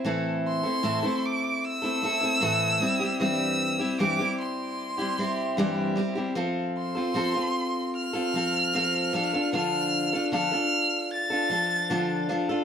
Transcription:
X:1
M:4/4
L:1/16
Q:1/4=76
K:Aphr
V:1 name="Violin"
z2 c'4 d'2 e'8 | e'4 d'2 c'8 z2 | z2 c'6 f'8 | f'4 f'4 a'6 z2 |]
V:2 name="Steel-string acoustic guitar"
[A,,E,A,CEA]3 [A,CEA] [A,,E,A,CEA] [A,CEA]4 [A,CEA] [A,CEA] [A,CEA] [A,,E,A,CEA]2 [G,CEG] [G,CEG] | [G,,E,G,CEG]3 [G,CEG] [G,,E,G,CEG] [G,CEG]4 [G,CEG] [G,CEG]2 [G,,E,G,CEG]2 [G,CEG] [G,CEG] | [F,CFA]3 [CFA] [F,CFA] [CFA]4 [CFA] [F,CFA]2 [F,CFA]2 [F,DFA] [DFA] | [D,F,DFA]3 [DFA] [D,F,DFA] [DFA]4 [DFA] [F,DFA]2 [D,F,DFA]2 [F,DFA] [DFA] |]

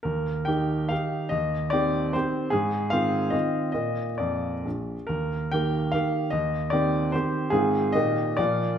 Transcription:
X:1
M:3/4
L:1/8
Q:1/4=144
K:Eb
V:1 name="Grand piano"
[E,,B]2 [E,EGg]2 [E,EGf]2 | [E,,e]2 [E,CGd]2 [E,CGc]2 | [A,,A]2 [E,CFf]2 [E,CFe]2 | [B,,B,Fe]2 [F,,d]2 B,,,2 |
[E,,B]2 [E,B,Gg]2 [E,B,Gf]2 | [E,,e]2 [E,CGd]2 [E,CGc]2 | [A,,E,CFA]2 [B,,E,B,Ge]2 [B,,F,B,Fd]2 |]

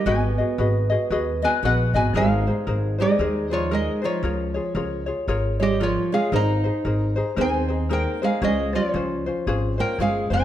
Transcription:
X:1
M:4/4
L:1/8
Q:"Swing" 1/4=115
K:G#m
V:1 name="Resonator guitar played with a steel bar"
[Bg]4- [Bg] [Bg] [Bf] [Bg] | [K:Ab] [Af]3 [Ge]2 [Fd] [Ae] [Fd]- | [Fd]3 z2 [Ge] [Fd] [Af] | [eb]4 [ca]2 [Bg] [Af] |
[Ae] [Fd]4 [Bg] [Af] [ca] |]
V:2 name="Ukulele"
[FGBd] [FGd] [FGBd] [FGd] [FGBd] [FGd] [FGBd] [FGd] | [K:Ab] [EABc] [EAc] [EABc] [EAc] [EABc] [EAc] [EABc] [EAc] | [FABd] [FAd] [FABd] [FAd] [FABd] [FAd] [FABd] [FAd] | [EABc] [EAc] [EABc] [EAc] [EABc] [EAc] [EABc] [EAc] |
[DFAc] [DFc] [DFAc] [DFc] [DFAc] [DFc] [DFAc] [DFc] |]
V:3 name="Steel-string acoustic guitar" clef=bass
B,4- B, B, B, B, | [K:Ab] A,3 A,2 F, A, F,- | F,3 z2 G, F, A, | E4 C2 B, A, |
A, F,4 B, A, C |]
V:4 name="Upright bass" clef=bass
G,,,2 G,,,2 D,,2 A,,, G,,, | [K:Ab] A,,,2 A,,,2 E,,4 | D,,2 D,,2 A,,,4 | A,,,2 A,,,2 E,,4 |
D,,2 D,,2 A,,,2 G,,, F,,, |]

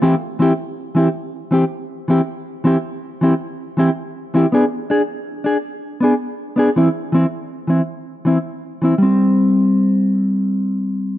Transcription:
X:1
M:12/8
L:1/8
Q:3/8=107
K:C
V:1 name="Clean electric guitar"
[E,CEG] z [E,CEG] z2 [E,CEG] z2 [E,CG] z2 [E,CEG] | z2 [E,CEG] z2 [E,CEG] z2 [E,CEG] z2 [E,CEG] | [B,D^G] z [DG] z2 [DG] z2 [B,DG] z2 [B,DG] | [E,CE] z [E,CE] z2 [E,CE] z2 [E,CE] z2 [E,CE] |
[G,C]12 |]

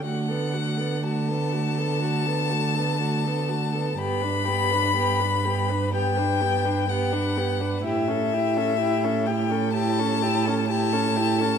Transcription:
X:1
M:4/4
L:1/16
Q:1/4=62
K:Bm
V:1 name="Violin"
f4 a12 | b8 g4 f4 | e6 g2 a4 a4 |]
V:2 name="Violin"
F A F A F A F A F A F A F A F A | G B G B G B G B G B G B G B G B | G A G A G A G A G A G A G A G A |]
V:3 name="Viola"
A, B, A, B, A, B, A, B, A, B, A, B, A, B, A, B, | B, D B, D B, D B, D B, D B, D B, D B, D | E C E C E C E C E C E C E C E C |]
V:4 name="Cello" clef=bass
D,16 | G,,16 | A,,16 |]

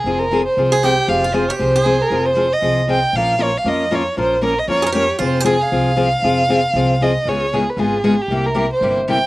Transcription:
X:1
M:4/4
L:1/16
Q:"Swing" 1/4=233
K:Fm
V:1 name="Violin"
A2 B4 c4 z2 g4 | f4 c2 d2 c6 B2- | B2 c4 e4 z2 g4 | f4 d2 f2 e4 d4 |
c4 B2 e2 d4 d4 | c4 A2 f8- f2- | f12 e4 | d4 A2 _c2 A6 G2- |
G2 B4 c4 z2 g4 |]
V:2 name="Steel-string acoustic guitar"
z8 z2 A2 G4- | G2 F4 G4 A6- | A2 z12 z2 | z16 |
z8 z2 A B G4 | F3 G A8 z4 | z16 | z16 |
z16 |]
V:3 name="Steel-string acoustic guitar"
[F,CFA]2 z2 [F,CFA]2 z2 [F,CFA]2 z2 [F,CFA]2 z2 | [F,CFA]2 z2 [F,CFA]2 z2 [F,CFA]2 z2 [F,CFA]2 z2 | [F,CFA]2 z2 [F,CFA]2 z2 [F,CFA]2 z2 [F,CFA]2 z2 | [F,B,DFB]2 z2 [F,B,DFB]2 z2 [F,B,DFB]2 z2 [F,B,DFB]2 z2 |
[F,B,DFB]2 z2 [F,B,DFB]2 z2 [F,B,DFB]2 z2 [F,B,DFB]2 z2 | [F,CFA]2 z2 [F,CFA]2 z2 [F,CFA]2 z2 [F,CFA]2 z2 | [F,CFA]2 z2 [F,CFA]2 z2 [F,CFA]2 z2 [F,CFA]2 z2 | [D,A,_CFA]2 z2 [D,A,CFA]2 z2 [D,A,CFA]2 z2 [D,A,CFA]2 z2 |
[C,G,B,=EG]2 z2 [C,G,B,EG]2 z2 [C,G,B,EG]2 z2 [C,G,B,EG]2 z2 |]
V:4 name="Upright bass" clef=bass
F,,,8 C,,8 | F,,,8 C,,8 | F,,,8 C,,8 | B,,,8 F,,8 |
B,,,8 F,,8 | F,,,8 C,,8 | F,,,8 C,,8 | D,,8 A,,,8 |
C,,8 G,,,8 |]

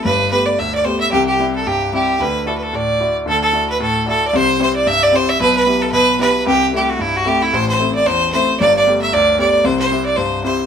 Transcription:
X:1
M:4/4
L:1/16
Q:"Swing" 1/4=225
K:Dmix
V:1 name="Fiddle"
B4 B2 d2 e2 d2 c2 e2 | G2 G4 A2 G4 G4 | B4 A3/2 B/2 A2 d6 z2 | A2 A4 B2 A4 A3 d |
c4 c2 d2 e2 d2 c2 e2 | B2 B4 A2 B4 B4 | G4 G2 F2 E2 F2 G2 E2 | c2 c4 d2 c4 c4 |
d2 d4 e2 d4 d4 | c2 c4 d2 c4 c4 |]
V:2 name="Grand piano"
[G,,,G,,]4 [A,B,G]4 D,,4 [A,B,G]4 | [C,,C,]4 [G,CE]4 G,,4 [G,CE]4 | [D,,D,]4 [DEF]4 A,,4 [DEF]4 | [D,,D,]4 [DEF]4 A,,4 [DEF]4 |
[C,,C,]4 [CEG]4 G,,4 [CEG]4 | [B,,,B,,]4 [B,EG]4 B,,4 [B,EG]4 | [C,,C,]4 [A,CE]4 G,,4 [A,CE]4 | [A,,,A,,]4 [A,CE]4 E,,4 [A,CE]4 |
[G,,,G,,]4 [A,B,G]4 D,,4 [A,B,G]4 | [C,,C,]4 [CEG]4 G,,4 [CEG]4 |]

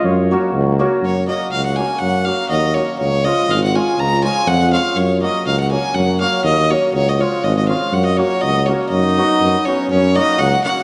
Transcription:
X:1
M:2/4
L:1/16
Q:"Swing 16ths" 1/4=122
K:F#
V:1 name="Violin"
z8 | c2 d2 e f g2 | f2 e2 d2 c2 | c2 d2 e f g2 |
a2 g2 f2 e2 | c2 d2 e f g2 | f2 e2 d2 c2 | c d c2 d d e2 |
f d c2 d2 c2 | d6 c2 | c2 d2 f2 f2 |]
V:2 name="Trumpet"
c4 z4 | z8 | z8 | z8 |
z8 | z8 | z8 | z8 |
z8 | D6 C2 | C2 D2 F2 F2 |]
V:3 name="Hammered dulcimer"
z2 [F,A,CF]2 z2 [F,A,CF]2 | z2 [F,A,CF]2 z2 [F,A,CF]2 | z2 [F,A,CF]2 z2 [F,A,CF]2 | z2 [E,G,CE]2 z2 [E,G,CE]2 |
z2 [E,G,CE]2 z2 [E,G,CE]2 | z2 [F,A,CF]2 z2 [F,A,CF]2 | z2 [F,A,CF]2 z2 [F,A,CF]2 | z2 [E,G,CE]2 z2 [E,G,CE]2 |
z2 [F,A,CF]2 z2 [F,A,CF]2 | z2 [F,B,DF]2 z2 [F,B,DF]2 | z2 [F,A,CF]2 z2 [F,A,CF]2 |]
V:4 name="Tuba" clef=bass
F,,4 C,,4 | F,,4 C,,4 | F,,4 D,,4 | C,,4 G,,,4 |
C,,4 E,,4 | F,,4 C,,4 | F,,4 D,,4 | C,,4 G,,,4 |
F,,4 C,,4 | F,,4 F,,2 z2 | F,,4 C,,2 z2 |]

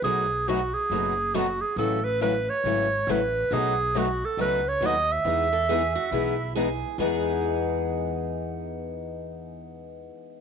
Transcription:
X:1
M:4/4
L:1/8
Q:"Swing" 1/4=138
K:E
V:1 name="Clarinet"
G2 F G3 F G | A B B c3 B2 | G2 F A B c d e- | e6 z2 |
z8 | z8 |]
V:2 name="Steel-string acoustic guitar"
z8 | z8 | z8 | z A G F E2 G2 |
G8- | G8 |]
V:3 name="Steel-string acoustic guitar"
[B,,F,A,DFB] z [B,,F,A,DFB] z [B,,F,A,DFB] z [B,,F,A,DFB] z | [C,F,CE] z [C,F,CE] z [C,F,CE] z [C,F,CE] z | [B,,F,A,DFB] z [B,,F,A,DFB] z [B,,F,A,DFB] z [B,,F,A,DFB] z | [E,G,B,DG] z [E,G,B,DG] z [E,G,B,DG] z [E,G,B,DG] z |
[E,G,B,DG]8- | [E,G,B,DG]8 |]
V:4 name="Steel-string acoustic guitar"
[B,,F,A,DF] z [B,,F,A,DF] z [B,,F,A,DF] z [B,,F,A,DF] z | [C,E,A,CF] z [C,E,A,CF] z [C,E,A,CF] z [C,E,A,CF] z | [B,,F,A,DF] z [B,,F,A,DF] z [B,,F,A,DF] z [B,,F,A,DF] z | [E,B,DG] z [E,B,DG] z [E,B,DG] z [E,B,DG] z |
[E,B,DG]8- | [E,B,DG]8 |]
V:5 name="Upright bass" clef=bass
B,,,4 F,,,4 | A,,,4 G,,,2 A,,,2 | B,,,4 C,,2 D,,2 | E,,4 B,,,4 |
E,,8- | E,,8 |]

